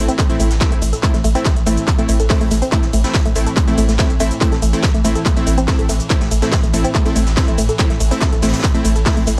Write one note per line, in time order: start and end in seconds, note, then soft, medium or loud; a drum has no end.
0.00 9.40 A2 medium
0.00 9.40 E3 medium
0.00 0.15 A3 medium
0.00 0.15 C4 medium
0.00 0.15 E4 medium
0.08 0.11 C4 loud
0.08 closed hi-hat medium
0.08 shaker soft
0.18 0.23 A3 loud
0.18 kick loud
0.18 clap loud
0.18 closed hi-hat medium
0.18 closed hi-hat loud
0.18 ride medium
0.18 shaker soft
0.29 0.39 A1 medium
0.29 0.47 A3 loud
0.29 0.47 C4 medium
0.29 0.47 E4 loud
0.29 closed hi-hat soft
0.29 closed hi-hat medium
0.29 shaker soft
0.39 0.50 A1 loud
0.39 0.46 A3 medium
0.39 closed hi-hat medium
0.39 open hi-hat loud
0.39 ride medium
0.39 shaker medium
0.51 0.61 A1 medium
0.51 snare medium
0.51 closed hi-hat medium
0.51 shaker soft
0.60 0.78 A3 loud
0.60 0.78 C4 medium
0.60 0.78 E4 loud
0.60 kick loud
0.60 snare loud
0.60 clap loud
0.60 closed hi-hat medium
0.60 ride medium
0.60 shaker soft
0.72 0.81 A1 medium
0.72 0.78 A3 medium
0.72 closed hi-hat medium
0.72 shaker soft
0.81 0.93 A1 loud
0.81 0.89 A3 medium
0.81 closed hi-hat medium
0.81 open hi-hat loud
0.81 ride medium
0.81 shaker medium
0.93 0.99 A4 medium
0.93 closed hi-hat medium
0.93 shaker soft
1.03 1.06 A3 medium
1.03 1.14 A3 medium
1.03 1.14 C4 medium
1.03 1.14 E4 medium
1.03 kick loud
1.03 clap loud
1.03 closed hi-hat medium
1.03 closed hi-hat loud
1.03 ride medium
1.03 shaker soft
1.14 1.24 A1 medium
1.14 1.17 A3 medium
1.14 snare soft
1.14 closed hi-hat medium
1.14 shaker soft
1.24 1.35 A1 loud
1.24 1.29 A3 medium
1.24 closed hi-hat medium
1.24 open hi-hat loud
1.24 ride medium
1.24 shaker medium
1.35 1.46 A3 loud
1.35 1.38 C4 loud
1.35 1.46 C4 medium
1.35 1.46 E4 loud
1.35 closed hi-hat medium
1.35 closed hi-hat soft
1.35 shaker soft
1.45 1.50 A3 loud
1.45 kick loud
1.45 snare loud
1.45 clap loud
1.45 closed hi-hat medium
1.45 closed hi-hat loud
1.45 ride medium
1.45 shaker soft
1.56 1.66 A1 medium
1.56 closed hi-hat medium
1.56 shaker soft
1.66 1.77 A1 loud
1.66 1.84 A3 medium
1.66 1.73 A3 medium
1.66 1.84 C4 medium
1.66 1.84 E4 medium
1.66 closed hi-hat medium
1.66 open hi-hat loud
1.66 ride medium
1.66 shaker medium
1.77 closed hi-hat medium
1.77 shaker soft
1.88 kick loud
1.88 clap loud
1.88 closed hi-hat medium
1.88 ride medium
1.88 shaker soft
1.99 2.08 A1 medium
1.99 2.16 A3 loud
1.99 2.05 A3 medium
1.99 2.16 C4 medium
1.99 2.16 E4 loud
1.99 closed hi-hat medium
1.99 shaker soft
2.09 2.19 A1 loud
2.09 2.15 A3 medium
2.09 closed hi-hat medium
2.09 open hi-hat loud
2.09 ride medium
2.09 shaker medium
2.20 2.30 A1 medium
2.20 2.26 A4 medium
2.20 closed hi-hat medium
2.20 shaker soft
2.29 2.47 A3 loud
2.29 2.33 A3 medium
2.29 2.47 C4 medium
2.29 2.47 E4 loud
2.29 kick loud
2.29 snare loud
2.29 clap loud
2.29 closed hi-hat loud
2.29 open hi-hat medium
2.29 ride medium
2.29 shaker soft
2.41 2.50 A1 medium
2.41 2.43 A3 medium
2.41 closed hi-hat medium
2.41 shaker soft
2.51 2.62 A1 loud
2.51 2.55 A3 medium
2.51 snare medium
2.51 closed hi-hat medium
2.51 open hi-hat loud
2.51 ride medium
2.51 shaker medium
2.62 2.64 C4 loud
2.62 closed hi-hat medium
2.62 closed hi-hat soft
2.62 shaker soft
2.72 2.83 A3 medium
2.72 2.77 A3 loud
2.72 2.83 C4 medium
2.72 2.83 E4 medium
2.72 kick loud
2.72 clap loud
2.72 closed hi-hat loud
2.72 closed hi-hat medium
2.72 ride medium
2.72 shaker soft
2.83 2.93 A1 medium
2.83 snare medium
2.83 closed hi-hat medium
2.83 shaker soft
2.93 3.04 A1 loud
2.93 3.00 A3 medium
2.93 closed hi-hat medium
2.93 open hi-hat loud
2.93 ride medium
2.93 shaker medium
3.04 3.15 A3 loud
3.04 3.15 C4 medium
3.04 3.15 E4 loud
3.04 snare medium
3.04 closed hi-hat medium
3.04 shaker soft
3.14 kick loud
3.14 snare loud
3.14 clap loud
3.14 closed hi-hat medium
3.14 ride medium
3.14 shaker soft
3.25 3.35 A1 medium
3.25 3.32 A3 medium
3.25 closed hi-hat medium
3.25 closed hi-hat soft
3.25 shaker soft
3.36 3.46 A1 loud
3.36 3.42 A3 medium
3.36 3.53 A3 medium
3.36 3.53 C4 medium
3.36 3.53 E4 medium
3.36 closed hi-hat medium
3.36 open hi-hat loud
3.36 ride medium
3.36 shaker medium
3.46 3.53 A4 medium
3.46 closed hi-hat medium
3.46 shaker soft
3.56 3.59 A3 medium
3.56 kick loud
3.56 clap loud
3.56 closed hi-hat medium
3.56 ride medium
3.56 shaker soft
3.67 3.77 A1 medium
3.67 3.70 A3 medium
3.67 3.85 A3 loud
3.67 3.85 C4 medium
3.67 3.85 E4 loud
3.67 closed hi-hat medium
3.67 closed hi-hat soft
3.67 shaker soft
3.78 3.88 A1 loud
3.78 3.82 A3 medium
3.78 closed hi-hat medium
3.78 open hi-hat loud
3.78 ride medium
3.78 shaker medium
3.89 3.99 A1 medium
3.89 3.93 A3 medium
3.89 snare medium
3.89 closed hi-hat medium
3.89 shaker soft
3.99 4.03 A3 loud
3.99 4.10 A3 medium
3.99 4.10 C4 medium
3.99 4.10 E4 loud
3.99 kick loud
3.99 snare loud
3.99 clap loud
3.99 closed hi-hat medium
3.99 ride medium
3.99 shaker soft
4.10 4.19 A1 medium
4.10 closed hi-hat medium
4.10 shaker soft
4.19 4.31 A1 loud
4.19 4.27 A3 loud
4.19 4.31 A3 loud
4.19 4.31 C4 medium
4.19 4.31 E4 loud
4.19 closed hi-hat medium
4.19 open hi-hat loud
4.19 ride medium
4.19 shaker medium
4.31 closed hi-hat medium
4.31 shaker soft
4.41 4.46 A3 loud
4.41 4.52 A3 medium
4.41 4.52 C4 medium
4.41 4.52 E4 medium
4.41 kick loud
4.41 clap loud
4.41 closed hi-hat medium
4.41 ride medium
4.41 shaker soft
4.52 4.62 A1 medium
4.52 4.56 A4 medium
4.52 snare soft
4.52 closed hi-hat medium
4.52 shaker soft
4.62 4.73 A1 loud
4.62 4.69 A3 medium
4.62 closed hi-hat medium
4.62 open hi-hat loud
4.62 ride medium
4.62 shaker medium
4.73 4.84 A3 loud
4.73 4.84 C4 medium
4.73 4.84 E4 loud
4.73 closed hi-hat soft
4.73 shaker soft
4.83 kick loud
4.83 snare loud
4.83 clap loud
4.83 closed hi-hat medium
4.83 ride medium
4.83 shaker soft
4.94 5.04 A1 medium
4.94 5.01 A3 medium
4.94 closed hi-hat medium
4.94 shaker soft
5.05 5.15 A1 loud
5.05 5.11 A3 medium
5.05 5.22 A3 medium
5.05 5.22 C4 medium
5.05 5.22 E4 medium
5.05 closed hi-hat medium
5.05 open hi-hat loud
5.05 ride medium
5.05 shaker medium
5.15 5.22 A4 medium
5.15 closed hi-hat soft
5.15 shaker soft
5.26 5.28 A3 medium
5.26 kick loud
5.26 clap loud
5.26 closed hi-hat medium
5.26 ride medium
5.26 shaker soft
5.37 5.46 A1 medium
5.37 5.39 A3 medium
5.37 5.54 A3 loud
5.37 5.54 C4 medium
5.37 5.54 E4 loud
5.37 closed hi-hat medium
5.37 shaker soft
5.47 5.57 A1 loud
5.47 5.51 A3 medium
5.47 closed hi-hat medium
5.47 open hi-hat loud
5.47 ride medium
5.47 shaker medium
5.58 5.68 A1 medium
5.58 5.60 C4 loud
5.58 closed hi-hat medium
5.58 shaker soft
5.68 5.85 A3 loud
5.68 5.72 A3 loud
5.68 5.85 C4 medium
5.68 5.85 E4 loud
5.68 kick loud
5.68 snare loud
5.68 clap loud
5.68 closed hi-hat medium
5.68 open hi-hat medium
5.68 ride medium
5.68 shaker soft
5.79 5.88 A1 medium
5.79 5.83 A4 medium
5.79 closed hi-hat medium
5.79 shaker soft
5.89 6.00 A1 loud
5.89 5.96 A3 medium
5.89 snare soft
5.89 closed hi-hat medium
5.89 open hi-hat loud
5.89 ride medium
5.89 shaker medium
6.00 closed hi-hat soft
6.00 closed hi-hat medium
6.00 shaker soft
6.10 6.21 A3 medium
6.10 6.21 C4 medium
6.10 6.21 E4 medium
6.10 kick loud
6.10 clap loud
6.10 closed hi-hat medium
6.10 ride medium
6.10 shaker soft
6.21 6.31 A1 medium
6.21 6.27 A3 medium
6.21 snare medium
6.21 closed hi-hat medium
6.21 shaker soft
6.31 6.42 A1 loud
6.31 6.38 A3 medium
6.31 closed hi-hat medium
6.31 open hi-hat loud
6.31 ride medium
6.31 shaker medium
6.42 6.53 A3 loud
6.42 6.53 C4 medium
6.42 6.53 E4 loud
6.42 6.48 A4 medium
6.42 snare medium
6.42 closed hi-hat medium
6.42 shaker soft
6.52 6.55 A3 medium
6.52 kick loud
6.52 snare loud
6.52 clap loud
6.52 closed hi-hat medium
6.52 ride medium
6.52 shaker soft
6.63 6.73 A1 medium
6.63 6.66 A3 medium
6.63 closed hi-hat medium
6.63 closed hi-hat soft
6.63 shaker soft
6.73 6.84 A1 loud
6.73 6.78 A3 medium
6.73 6.91 A3 medium
6.73 6.91 C4 medium
6.73 6.91 E4 medium
6.73 closed hi-hat medium
6.73 open hi-hat loud
6.73 ride medium
6.73 shaker medium
6.84 6.87 C4 loud
6.84 closed hi-hat medium
6.84 shaker soft
6.95 6.99 A3 loud
6.95 kick loud
6.95 clap loud
6.95 closed hi-hat medium
6.95 ride medium
6.95 shaker soft
7.06 7.15 A1 medium
7.06 7.23 A3 loud
7.06 7.23 C4 medium
7.06 7.23 E4 loud
7.06 7.10 A4 medium
7.06 closed hi-hat soft
7.06 closed hi-hat medium
7.06 shaker soft
7.16 7.26 A1 loud
7.16 7.22 A3 medium
7.16 closed hi-hat medium
7.16 open hi-hat loud
7.16 ride medium
7.16 shaker medium
7.26 7.37 A1 medium
7.26 snare medium
7.26 closed hi-hat soft
7.26 shaker soft
7.36 7.54 A3 loud
7.36 7.54 C4 medium
7.36 7.54 E4 loud
7.36 kick loud
7.36 snare loud
7.36 clap loud
7.36 closed hi-hat medium
7.36 ride medium
7.36 shaker soft
7.48 7.57 A1 medium
7.48 7.54 A3 medium
7.48 closed hi-hat soft
7.48 shaker soft
7.58 7.69 A1 loud
7.58 7.65 A3 medium
7.58 closed hi-hat medium
7.58 open hi-hat loud
7.58 ride medium
7.58 shaker medium
7.69 7.75 A4 medium
7.69 closed hi-hat medium
7.69 shaker soft
7.79 7.82 A3 medium
7.79 7.90 A3 medium
7.79 7.90 C4 medium
7.79 7.90 E4 medium
7.79 kick loud
7.79 clap loud
7.79 closed hi-hat medium
7.79 ride medium
7.79 shaker soft
7.90 8.00 A1 medium
7.90 7.93 A3 medium
7.90 snare soft
7.90 closed hi-hat medium
7.90 shaker soft
8.00 8.11 A1 loud
8.00 8.05 A3 medium
8.00 closed hi-hat medium
8.00 open hi-hat loud
8.00 ride medium
8.00 shaker medium
8.11 8.22 A3 loud
8.11 8.14 C4 loud
8.11 8.22 C4 medium
8.11 8.22 E4 loud
8.11 closed hi-hat medium
8.11 closed hi-hat soft
8.11 shaker soft
8.20 8.26 A3 loud
8.20 kick loud
8.20 snare loud
8.20 clap loud
8.20 closed hi-hat medium
8.20 ride medium
8.20 shaker soft
8.32 8.42 A1 medium
8.32 8.36 A4 medium
8.32 closed hi-hat medium
8.32 shaker soft
8.42 8.53 A1 loud
8.42 8.49 A3 medium
8.42 8.60 A3 medium
8.42 8.60 C4 medium
8.42 8.60 E4 medium
8.42 snare medium
8.42 closed hi-hat medium
8.42 open hi-hat loud
8.42 ride medium
8.42 shaker medium
8.48 snare medium
8.48 closed hi-hat medium
8.53 snare medium
8.53 closed hi-hat medium
8.53 shaker soft
8.59 snare loud
8.59 closed hi-hat medium
8.64 kick loud
8.64 clap loud
8.64 closed hi-hat medium
8.64 closed hi-hat loud
8.64 ride medium
8.64 shaker soft
8.75 8.84 A1 medium
8.75 8.81 A3 medium
8.75 8.92 A3 loud
8.75 8.92 C4 medium
8.75 8.92 E4 loud
8.75 closed hi-hat medium
8.75 shaker soft
8.85 8.95 A1 loud
8.85 8.91 A3 medium
8.85 closed hi-hat medium
8.85 open hi-hat loud
8.85 ride medium
8.85 shaker medium
8.96 9.06 A1 medium
8.96 9.02 A4 medium
8.96 closed hi-hat medium
8.96 shaker soft
9.05 9.09 A3 medium
9.05 9.23 A3 loud
9.05 9.23 C4 medium
9.05 9.23 E4 loud
9.05 kick loud
9.05 snare loud
9.05 clap loud
9.05 closed hi-hat medium
9.05 open hi-hat medium
9.05 ride medium
9.05 shaker soft
9.17 9.27 A1 medium
9.17 9.19 A3 medium
9.17 closed hi-hat medium
9.17 shaker soft
9.27 9.38 A1 loud
9.27 9.31 A3 medium
9.27 snare medium
9.27 closed hi-hat medium
9.27 open hi-hat loud
9.27 ride medium
9.27 shaker medium